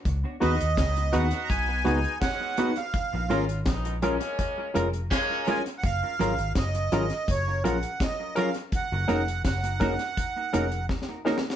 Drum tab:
HH |x-----x--x--x--x--x--x--x-----x--x--x-----x--x--|x-----x--x--x--x--x--x--x-----x--x--x-----x--x--|x-----x--x--x--x--x--x--x-----x--x--x-----x--x--|x-----x--x--x--x--x--x--x-----x--x--------------|
SD |------------o-----------------------o-----------|------------o-----------------------o-----------|------------o-----------------------o-----------|------------o-----------------------o-o---o-o-o-|
BD |o-----------o-----------o-----------o-----------|o-----------o-----------o-----------o-----------|o-----------o-----------o-----------o-----------|o-----------o-----o-----o-----------o-----------|